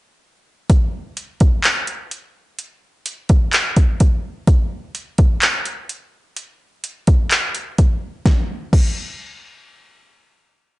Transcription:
0.70 kick loud
0.70 closed hi-hat medium
1.17 closed hi-hat medium
1.40 kick loud
1.40 closed hi-hat medium
1.64 clap loud
1.64 closed hi-hat medium
1.87 closed hi-hat medium
2.11 closed hi-hat medium
2.59 closed hi-hat medium
3.06 closed hi-hat medium
3.29 kick loud
3.29 closed hi-hat medium
3.53 clap loud
3.53 closed hi-hat medium
3.76 kick medium
3.76 closed hi-hat medium
4.00 kick medium
4.00 closed hi-hat medium
4.47 kick loud
4.47 closed hi-hat medium
4.95 closed hi-hat medium
5.18 kick loud
5.18 closed hi-hat medium
5.42 clap loud
5.42 closed hi-hat medium
5.65 closed hi-hat medium
5.89 closed hi-hat medium
6.37 closed hi-hat medium
6.84 closed hi-hat medium
7.07 kick loud
7.07 closed hi-hat medium
7.31 clap loud
7.31 closed hi-hat medium
7.55 closed hi-hat medium
7.78 kick medium
7.78 closed hi-hat medium
8.26 kick loud
8.26 snare medium
8.73 kick loud
8.73 crash medium

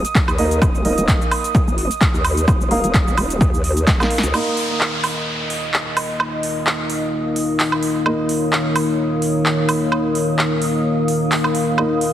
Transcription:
0.00 12.13 D#6 medium
0.05 closed hi-hat medium
0.05 shaker medium
0.15 kick loud
0.15 clap loud
0.15 closed hi-hat medium
0.15 shaker medium
0.28 0.60 D#2 medium
0.28 high woodblock medium
0.28 shaker soft
0.38 0.57 A#3 medium
0.38 0.57 D#4 medium
0.38 0.57 A#4 medium
0.38 0.57 D#5 loud
0.38 open hi-hat loud
0.51 closed hi-hat medium
0.51 shaker medium
0.62 0.96 D#1 medium
0.62 kick loud
0.62 closed hi-hat medium
0.62 high woodblock medium
0.62 shaker medium
0.75 shaker soft
0.85 1.75 A#3 medium
0.85 1.76 D#4 medium
0.85 1.76 A#4 medium
0.85 1.76 D#5 medium
0.85 open hi-hat loud
0.98 1.19 D#1 loud
0.98 closed hi-hat medium
0.98 shaker medium
1.08 kick loud
1.08 clap loud
1.08 closed hi-hat medium
1.08 shaker medium
1.22 shaker soft
1.31 open hi-hat medium
1.31 high woodblock medium
1.44 closed hi-hat medium
1.44 shaker medium
1.55 kick loud
1.55 closed hi-hat medium
1.55 shaker medium
1.67 1.89 F#1 loud
1.67 shaker soft
1.78 open hi-hat loud
1.91 closed hi-hat medium
1.91 shaker medium
2.01 kick loud
2.01 clap loud
2.01 closed hi-hat medium
2.01 shaker medium
2.14 2.46 D#2 loud
2.14 shaker soft
2.24 open hi-hat loud
2.24 high woodblock medium
2.37 closed hi-hat medium
2.37 shaker medium
2.48 2.82 D#1 medium
2.48 kick loud
2.48 closed hi-hat medium
2.48 high woodblock medium
2.48 shaker medium
2.61 shaker soft
2.71 2.84 A#3 medium
2.71 2.84 D#4 medium
2.71 2.84 A#4 medium
2.71 2.84 F5 loud
2.71 open hi-hat loud
2.84 3.16 D#1 loud
2.84 closed hi-hat medium
2.84 shaker medium
2.94 kick loud
2.94 clap loud
2.94 closed hi-hat medium
2.94 shaker medium
3.08 shaker soft
3.17 3.39 D#1 loud
3.17 open hi-hat loud
3.17 high woodblock medium
3.30 closed hi-hat medium
3.30 shaker medium
3.41 3.52 D#2 medium
3.41 kick loud
3.41 closed hi-hat medium
3.41 shaker medium
3.54 3.86 D#2 loud
3.54 shaker soft
3.64 open hi-hat loud
3.77 closed hi-hat medium
3.77 shaker medium
3.87 3.98 D#1 medium
3.87 kick loud
3.87 snare medium
3.87 clap loud
3.87 closed hi-hat medium
3.87 shaker medium
4.00 4.10 A#3 loud
4.00 4.10 D#4 medium
4.00 4.11 A#4 medium
4.00 4.10 F5 loud
4.00 snare medium
4.00 high woodblock medium
4.00 shaker soft
4.10 open hi-hat loud
4.18 snare loud
4.23 4.32 C#2 loud
4.23 closed hi-hat medium
4.23 shaker medium
4.34 12.13 D#3 medium
4.34 8.03 A#3 medium
4.34 12.13 A#3 medium
4.34 8.03 D#4 medium
4.34 12.13 D#4 medium
4.34 8.03 A#4 medium
4.34 12.13 A#4 medium
4.34 8.03 D#5 medium
4.34 8.05 D#5 medium
4.34 crash medium
4.34 downlifter medium
4.34 high woodblock medium
4.57 open hi-hat loud
4.64 12.13 F5 medium
4.72 12.13 A#4 medium
4.81 clap loud
5.04 open hi-hat medium
5.04 high woodblock medium
5.50 open hi-hat loud
5.74 clap loud
5.97 open hi-hat loud
5.97 high woodblock medium
6.20 high woodblock medium
6.43 open hi-hat loud
6.67 clap loud
6.90 open hi-hat loud
7.36 open hi-hat loud
7.59 clap loud
7.59 open hi-hat medium
7.72 high woodblock medium
7.83 open hi-hat loud
8.06 11.75 A#3 medium
8.06 11.75 D#4 medium
8.06 11.75 A#4 medium
8.06 11.77 C#5 medium
8.06 11.75 D#5 medium
8.06 high woodblock medium
8.29 open hi-hat loud
8.53 clap loud
8.76 open hi-hat loud
8.76 high woodblock medium
9.22 open hi-hat loud
9.46 clap loud
9.69 open hi-hat loud
9.69 high woodblock medium
9.92 high woodblock medium
10.15 open hi-hat loud
10.39 clap loud
10.62 open hi-hat loud
11.08 open hi-hat loud
11.31 clap loud
11.31 open hi-hat medium
11.44 high woodblock medium
11.55 open hi-hat loud
11.78 12.13 A#3 medium
11.78 12.13 D#4 medium
11.78 12.13 A#4 medium
11.78 12.13 D#5 medium
11.78 high woodblock medium
12.01 open hi-hat loud

